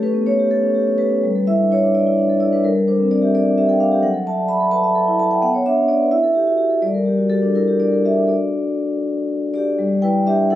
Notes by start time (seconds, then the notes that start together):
Already playing: A3 G4 A4
0.03 C#4 B4
0.14 B3
0.26 C#4 C#5
0.39 G4
0.51 A4
0.63 C#4
0.75 G4
0.87 C#4
0.98 G4 B4
1.10 C#4
1.23 G3
1.35 A4
1.47 E4 E5
1.59 D4
1.71 E4 C#5
1.83 D4
1.94 E4 D5
2.07 E4
2.18 D4
2.29 A4
2.40 E4 D5
2.52 D4 B4
2.64 G3 A#4
2.75 A4
2.88 D4 C5
3.00 C4
3.11 D4 D5
3.22 G4 E5
3.35 A4 D5
3.47 D4
3.58 G4 E5
3.69 A4 G5
3.80 D4 F5
3.92 G4
4.03 F#3 F#5
4.14 A4
4.27 E5 A5
4.37 D5
4.48 E5 B5
4.60 A4
4.71 B4 A5
4.84 E5
4.95 A4
5.08 E4
5.19 A4 A5
5.31 E5 G5
5.42 B3 F#5
5.54 C#5
5.66 D4 E5
5.78 C#4
5.88 D4 D5
6.01 B4
6.11 E4 E5
6.23 A4
6.35 G4
6.47 F#4
6.58 G4
6.70 A4
6.82 G3 D5
6.94 A#4
7.06 G4
7.18 F#4
7.30 G4 A4
7.42 D4
7.55 E4 A#4
7.68 G4
7.79 D4 D5
7.92 A#4
8.05 G4 E5
8.17 D4
8.24 D4 F#4 A4
8.29 D5
9.54 G4 D5
9.79 G3
10.02 E4 B4 G5
10.27 D4 G4 E5
10.50 E4 A4 F#5